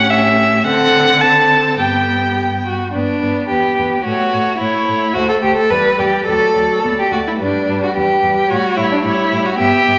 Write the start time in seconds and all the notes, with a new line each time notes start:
Already playing: A2 C#4 G4 F#5
0.11 E5
0.66 D3 C4 A4 F#5
1.21 C4 A4 A5
1.79 G2 B3 G4 G5
2.36 G4
2.65 F#4
2.93 G2 B3 D4 B4
3.22 G2 B3 B4
3.49 E2 B3 G4 B4
3.77 E2 B3 B4
4.04 A2 A3 F#4 C#5
4.33 A2 A3 C#5
4.59 A2 A3 E4 C#5
4.87 A2 A3 C#5
5.14 D2 A3 F#4 C5
5.29 A4
5.43 D2 A3 G4 C5
5.57 A4
5.70 E2 G3 B4 D5
5.99 E2 G3 G4 D5
6.26 D2 F#3 A4 D5
6.55 D2 F#3 D5
6.84 D2 B3 D5
6.99 G4
7.12 D2 A3 F#4 D5
7.27 E4
7.39 G2 G3 D4 B4
7.67 G2 G3 B4
7.84 F#4
7.95 E2 G3 G4 B4
8.21 E2 G3 B4
8.50 A2 G3 F#4 C#5
8.77 A2 G3 E4 C#5
8.92 D4
9.04 A2 G3 E4 C#5
9.31 A2 G3 C#5
9.46 F#4
9.58 G2 B3 G4 E5
9.86 G2 B3 E5